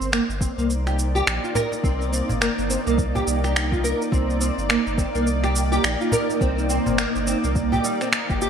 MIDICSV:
0, 0, Header, 1, 6, 480
1, 0, Start_track
1, 0, Key_signature, -3, "minor"
1, 0, Tempo, 571429
1, 1544, Time_signature, 4, 2, 24, 8
1, 7137, End_track
2, 0, Start_track
2, 0, Title_t, "Ambient pad"
2, 0, Program_c, 0, 92
2, 0, Note_on_c, 0, 58, 81
2, 0, Note_on_c, 0, 63, 77
2, 0, Note_on_c, 0, 74, 96
2, 7137, Note_off_c, 0, 58, 0
2, 7137, Note_off_c, 0, 63, 0
2, 7137, Note_off_c, 0, 74, 0
2, 7137, End_track
3, 0, Start_track
3, 0, Title_t, "Nylon-string guitar"
3, 0, Program_c, 1, 24
3, 0, Note_on_c, 1, 60, 72
3, 94, Note_off_c, 1, 60, 0
3, 102, Note_on_c, 1, 58, 94
3, 184, Note_off_c, 1, 58, 0
3, 344, Note_on_c, 1, 60, 66
3, 425, Note_off_c, 1, 60, 0
3, 488, Note_on_c, 1, 58, 65
3, 580, Note_off_c, 1, 58, 0
3, 728, Note_on_c, 1, 67, 70
3, 820, Note_off_c, 1, 67, 0
3, 966, Note_on_c, 1, 67, 96
3, 1059, Note_off_c, 1, 67, 0
3, 1207, Note_on_c, 1, 65, 70
3, 1300, Note_off_c, 1, 65, 0
3, 1305, Note_on_c, 1, 70, 94
3, 1440, Note_off_c, 1, 70, 0
3, 1545, Note_on_c, 1, 60, 96
3, 1773, Note_off_c, 1, 60, 0
3, 1783, Note_on_c, 1, 60, 69
3, 2014, Note_off_c, 1, 60, 0
3, 2023, Note_on_c, 1, 58, 92
3, 2105, Note_off_c, 1, 58, 0
3, 2265, Note_on_c, 1, 60, 65
3, 2346, Note_off_c, 1, 60, 0
3, 2406, Note_on_c, 1, 58, 71
3, 2499, Note_off_c, 1, 58, 0
3, 2646, Note_on_c, 1, 67, 67
3, 2739, Note_off_c, 1, 67, 0
3, 2887, Note_on_c, 1, 67, 97
3, 2980, Note_off_c, 1, 67, 0
3, 3124, Note_on_c, 1, 65, 70
3, 3218, Note_off_c, 1, 65, 0
3, 3225, Note_on_c, 1, 70, 103
3, 3360, Note_off_c, 1, 70, 0
3, 3460, Note_on_c, 1, 60, 89
3, 3689, Note_off_c, 1, 60, 0
3, 3699, Note_on_c, 1, 60, 72
3, 3932, Note_off_c, 1, 60, 0
3, 3940, Note_on_c, 1, 58, 92
3, 4023, Note_off_c, 1, 58, 0
3, 4179, Note_on_c, 1, 60, 71
3, 4263, Note_off_c, 1, 60, 0
3, 4324, Note_on_c, 1, 58, 71
3, 4418, Note_off_c, 1, 58, 0
3, 4563, Note_on_c, 1, 67, 69
3, 4658, Note_off_c, 1, 67, 0
3, 4803, Note_on_c, 1, 67, 94
3, 4898, Note_off_c, 1, 67, 0
3, 5044, Note_on_c, 1, 65, 69
3, 5138, Note_off_c, 1, 65, 0
3, 5144, Note_on_c, 1, 70, 95
3, 5279, Note_off_c, 1, 70, 0
3, 5384, Note_on_c, 1, 60, 89
3, 5614, Note_off_c, 1, 60, 0
3, 5624, Note_on_c, 1, 60, 73
3, 5854, Note_off_c, 1, 60, 0
3, 5865, Note_on_c, 1, 58, 94
3, 5946, Note_off_c, 1, 58, 0
3, 6106, Note_on_c, 1, 60, 68
3, 6186, Note_off_c, 1, 60, 0
3, 6249, Note_on_c, 1, 58, 66
3, 6341, Note_off_c, 1, 58, 0
3, 6486, Note_on_c, 1, 67, 73
3, 6579, Note_off_c, 1, 67, 0
3, 6585, Note_on_c, 1, 55, 66
3, 6720, Note_off_c, 1, 55, 0
3, 6730, Note_on_c, 1, 60, 69
3, 6784, Note_off_c, 1, 60, 0
3, 6971, Note_on_c, 1, 67, 65
3, 7057, Note_off_c, 1, 67, 0
3, 7069, Note_on_c, 1, 67, 94
3, 7137, Note_off_c, 1, 67, 0
3, 7137, End_track
4, 0, Start_track
4, 0, Title_t, "Sub bass"
4, 0, Program_c, 2, 38
4, 5, Note_on_c, 2, 31, 81
4, 169, Note_off_c, 2, 31, 0
4, 244, Note_on_c, 2, 31, 91
4, 409, Note_off_c, 2, 31, 0
4, 484, Note_on_c, 2, 36, 95
4, 1021, Note_off_c, 2, 36, 0
4, 1067, Note_on_c, 2, 34, 101
4, 1170, Note_off_c, 2, 34, 0
4, 1543, Note_on_c, 2, 36, 94
4, 1865, Note_off_c, 2, 36, 0
4, 1933, Note_on_c, 2, 31, 78
4, 2093, Note_off_c, 2, 31, 0
4, 2170, Note_on_c, 2, 31, 96
4, 2332, Note_off_c, 2, 31, 0
4, 2409, Note_on_c, 2, 36, 99
4, 2703, Note_off_c, 2, 36, 0
4, 2746, Note_on_c, 2, 36, 91
4, 3306, Note_off_c, 2, 36, 0
4, 3464, Note_on_c, 2, 36, 106
4, 3785, Note_off_c, 2, 36, 0
4, 3847, Note_on_c, 2, 31, 76
4, 4010, Note_off_c, 2, 31, 0
4, 4088, Note_on_c, 2, 31, 101
4, 4251, Note_off_c, 2, 31, 0
4, 4325, Note_on_c, 2, 36, 98
4, 4861, Note_off_c, 2, 36, 0
4, 4904, Note_on_c, 2, 34, 100
4, 5008, Note_off_c, 2, 34, 0
4, 5384, Note_on_c, 2, 36, 99
4, 5705, Note_off_c, 2, 36, 0
4, 5772, Note_on_c, 2, 31, 85
4, 5933, Note_off_c, 2, 31, 0
4, 6011, Note_on_c, 2, 31, 94
4, 6172, Note_off_c, 2, 31, 0
4, 6252, Note_on_c, 2, 36, 97
4, 6545, Note_off_c, 2, 36, 0
4, 6968, Note_on_c, 2, 31, 91
4, 7137, Note_off_c, 2, 31, 0
4, 7137, End_track
5, 0, Start_track
5, 0, Title_t, "Cajon"
5, 729, Note_on_c, 9, 38, 56
5, 813, Note_off_c, 9, 38, 0
5, 1298, Note_on_c, 9, 38, 37
5, 1306, Note_on_c, 9, 36, 95
5, 1382, Note_off_c, 9, 38, 0
5, 1390, Note_off_c, 9, 36, 0
5, 1444, Note_on_c, 9, 38, 58
5, 1528, Note_off_c, 9, 38, 0
5, 1927, Note_on_c, 9, 36, 81
5, 2011, Note_off_c, 9, 36, 0
5, 2411, Note_on_c, 9, 38, 35
5, 2495, Note_off_c, 9, 38, 0
5, 2648, Note_on_c, 9, 36, 93
5, 2651, Note_on_c, 9, 38, 61
5, 2732, Note_off_c, 9, 36, 0
5, 2735, Note_off_c, 9, 38, 0
5, 4570, Note_on_c, 9, 38, 65
5, 4654, Note_off_c, 9, 38, 0
5, 5140, Note_on_c, 9, 36, 101
5, 5143, Note_on_c, 9, 38, 34
5, 5224, Note_off_c, 9, 36, 0
5, 5227, Note_off_c, 9, 38, 0
5, 5292, Note_on_c, 9, 38, 51
5, 5376, Note_off_c, 9, 38, 0
5, 5765, Note_on_c, 9, 36, 75
5, 5849, Note_off_c, 9, 36, 0
5, 6246, Note_on_c, 9, 38, 39
5, 6330, Note_off_c, 9, 38, 0
5, 6484, Note_on_c, 9, 38, 56
5, 6491, Note_on_c, 9, 36, 84
5, 6568, Note_off_c, 9, 38, 0
5, 6575, Note_off_c, 9, 36, 0
5, 6978, Note_on_c, 9, 38, 52
5, 7062, Note_off_c, 9, 38, 0
5, 7137, End_track
6, 0, Start_track
6, 0, Title_t, "Drums"
6, 14, Note_on_c, 9, 82, 29
6, 98, Note_off_c, 9, 82, 0
6, 110, Note_on_c, 9, 26, 93
6, 111, Note_on_c, 9, 82, 40
6, 194, Note_off_c, 9, 26, 0
6, 195, Note_off_c, 9, 82, 0
6, 253, Note_on_c, 9, 82, 20
6, 337, Note_off_c, 9, 82, 0
6, 343, Note_on_c, 9, 36, 92
6, 350, Note_on_c, 9, 82, 78
6, 427, Note_off_c, 9, 36, 0
6, 434, Note_off_c, 9, 82, 0
6, 493, Note_on_c, 9, 82, 33
6, 577, Note_off_c, 9, 82, 0
6, 591, Note_on_c, 9, 82, 43
6, 675, Note_off_c, 9, 82, 0
6, 731, Note_on_c, 9, 26, 28
6, 731, Note_on_c, 9, 82, 21
6, 815, Note_off_c, 9, 26, 0
6, 815, Note_off_c, 9, 82, 0
6, 832, Note_on_c, 9, 82, 73
6, 916, Note_off_c, 9, 82, 0
6, 973, Note_on_c, 9, 82, 31
6, 1057, Note_off_c, 9, 82, 0
6, 1070, Note_on_c, 9, 26, 94
6, 1071, Note_on_c, 9, 82, 43
6, 1154, Note_off_c, 9, 26, 0
6, 1155, Note_off_c, 9, 82, 0
6, 1213, Note_on_c, 9, 82, 20
6, 1297, Note_off_c, 9, 82, 0
6, 1309, Note_on_c, 9, 82, 75
6, 1393, Note_off_c, 9, 82, 0
6, 1452, Note_on_c, 9, 82, 30
6, 1536, Note_off_c, 9, 82, 0
6, 1543, Note_on_c, 9, 36, 120
6, 1552, Note_on_c, 9, 82, 42
6, 1627, Note_off_c, 9, 36, 0
6, 1636, Note_off_c, 9, 82, 0
6, 1693, Note_on_c, 9, 82, 21
6, 1777, Note_off_c, 9, 82, 0
6, 1792, Note_on_c, 9, 82, 77
6, 1876, Note_off_c, 9, 82, 0
6, 1933, Note_on_c, 9, 82, 29
6, 2017, Note_off_c, 9, 82, 0
6, 2030, Note_on_c, 9, 26, 92
6, 2031, Note_on_c, 9, 82, 45
6, 2114, Note_off_c, 9, 26, 0
6, 2115, Note_off_c, 9, 82, 0
6, 2172, Note_on_c, 9, 82, 22
6, 2256, Note_off_c, 9, 82, 0
6, 2272, Note_on_c, 9, 82, 78
6, 2356, Note_off_c, 9, 82, 0
6, 2413, Note_on_c, 9, 82, 36
6, 2497, Note_off_c, 9, 82, 0
6, 2504, Note_on_c, 9, 36, 106
6, 2508, Note_on_c, 9, 82, 45
6, 2588, Note_off_c, 9, 36, 0
6, 2592, Note_off_c, 9, 82, 0
6, 2653, Note_on_c, 9, 82, 21
6, 2737, Note_off_c, 9, 82, 0
6, 2752, Note_on_c, 9, 82, 77
6, 2836, Note_off_c, 9, 82, 0
6, 2892, Note_on_c, 9, 26, 29
6, 2893, Note_on_c, 9, 82, 33
6, 2976, Note_off_c, 9, 26, 0
6, 2977, Note_off_c, 9, 82, 0
6, 2993, Note_on_c, 9, 26, 98
6, 2994, Note_on_c, 9, 82, 45
6, 3077, Note_off_c, 9, 26, 0
6, 3078, Note_off_c, 9, 82, 0
6, 3126, Note_on_c, 9, 36, 101
6, 3135, Note_on_c, 9, 82, 21
6, 3210, Note_off_c, 9, 36, 0
6, 3219, Note_off_c, 9, 82, 0
6, 3231, Note_on_c, 9, 82, 77
6, 3315, Note_off_c, 9, 82, 0
6, 3375, Note_on_c, 9, 82, 33
6, 3459, Note_off_c, 9, 82, 0
6, 3463, Note_on_c, 9, 36, 116
6, 3472, Note_on_c, 9, 82, 44
6, 3547, Note_off_c, 9, 36, 0
6, 3556, Note_off_c, 9, 82, 0
6, 3614, Note_on_c, 9, 82, 21
6, 3698, Note_off_c, 9, 82, 0
6, 3706, Note_on_c, 9, 82, 78
6, 3790, Note_off_c, 9, 82, 0
6, 3852, Note_on_c, 9, 82, 30
6, 3936, Note_off_c, 9, 82, 0
6, 3947, Note_on_c, 9, 26, 93
6, 3948, Note_on_c, 9, 82, 44
6, 4031, Note_off_c, 9, 26, 0
6, 4032, Note_off_c, 9, 82, 0
6, 4090, Note_on_c, 9, 82, 21
6, 4174, Note_off_c, 9, 82, 0
6, 4182, Note_on_c, 9, 36, 96
6, 4188, Note_on_c, 9, 82, 75
6, 4266, Note_off_c, 9, 36, 0
6, 4272, Note_off_c, 9, 82, 0
6, 4329, Note_on_c, 9, 82, 34
6, 4413, Note_off_c, 9, 82, 0
6, 4427, Note_on_c, 9, 82, 47
6, 4511, Note_off_c, 9, 82, 0
6, 4567, Note_on_c, 9, 26, 29
6, 4568, Note_on_c, 9, 82, 22
6, 4651, Note_off_c, 9, 26, 0
6, 4652, Note_off_c, 9, 82, 0
6, 4668, Note_on_c, 9, 82, 77
6, 4752, Note_off_c, 9, 82, 0
6, 4809, Note_on_c, 9, 82, 32
6, 4893, Note_off_c, 9, 82, 0
6, 4907, Note_on_c, 9, 26, 98
6, 4908, Note_on_c, 9, 82, 44
6, 4991, Note_off_c, 9, 26, 0
6, 4992, Note_off_c, 9, 82, 0
6, 5051, Note_on_c, 9, 82, 21
6, 5135, Note_off_c, 9, 82, 0
6, 5148, Note_on_c, 9, 82, 83
6, 5232, Note_off_c, 9, 82, 0
6, 5293, Note_on_c, 9, 82, 32
6, 5377, Note_off_c, 9, 82, 0
6, 5384, Note_on_c, 9, 36, 111
6, 5389, Note_on_c, 9, 82, 44
6, 5468, Note_off_c, 9, 36, 0
6, 5473, Note_off_c, 9, 82, 0
6, 5531, Note_on_c, 9, 82, 22
6, 5615, Note_off_c, 9, 82, 0
6, 5625, Note_on_c, 9, 82, 75
6, 5709, Note_off_c, 9, 82, 0
6, 5769, Note_on_c, 9, 82, 31
6, 5853, Note_off_c, 9, 82, 0
6, 5866, Note_on_c, 9, 26, 93
6, 5867, Note_on_c, 9, 82, 40
6, 5950, Note_off_c, 9, 26, 0
6, 5951, Note_off_c, 9, 82, 0
6, 6011, Note_on_c, 9, 82, 22
6, 6095, Note_off_c, 9, 82, 0
6, 6109, Note_on_c, 9, 82, 74
6, 6193, Note_off_c, 9, 82, 0
6, 6250, Note_on_c, 9, 82, 33
6, 6334, Note_off_c, 9, 82, 0
6, 6346, Note_on_c, 9, 36, 102
6, 6348, Note_on_c, 9, 82, 44
6, 6430, Note_off_c, 9, 36, 0
6, 6432, Note_off_c, 9, 82, 0
6, 6494, Note_on_c, 9, 82, 22
6, 6578, Note_off_c, 9, 82, 0
6, 6589, Note_on_c, 9, 82, 78
6, 6673, Note_off_c, 9, 82, 0
6, 6729, Note_on_c, 9, 26, 29
6, 6730, Note_on_c, 9, 82, 33
6, 6813, Note_off_c, 9, 26, 0
6, 6814, Note_off_c, 9, 82, 0
6, 6826, Note_on_c, 9, 26, 92
6, 6827, Note_on_c, 9, 82, 45
6, 6910, Note_off_c, 9, 26, 0
6, 6911, Note_off_c, 9, 82, 0
6, 6969, Note_on_c, 9, 36, 94
6, 6971, Note_on_c, 9, 82, 22
6, 7053, Note_off_c, 9, 36, 0
6, 7055, Note_off_c, 9, 82, 0
6, 7069, Note_on_c, 9, 82, 77
6, 7137, Note_off_c, 9, 82, 0
6, 7137, End_track
0, 0, End_of_file